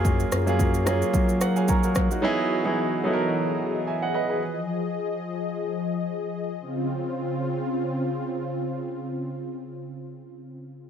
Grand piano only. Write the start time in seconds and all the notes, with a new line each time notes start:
Already playing: F#3 A#3 C#4 F4 G#4
0.46 F#3 A#3 C#4 F4 G#4
0.86 F#3 A#3 C#4 F4 G#4
1.41 F#5
1.56 C#5 F5 G#5
1.69 A#4 C#5 A#5
1.84 F#4 A#4
2.11 D#4 F#4
2.22 F#3 B3 D#4 E4 G#4
2.64 F#3 B3 D#4 E4 G#4
3.04 F#3 B3 D#4 E4 A4
3.13 A#4
3.87 E5 G#5
4.02 D#5 F#5
4.14 B4 D#5
4.29 G#4 B4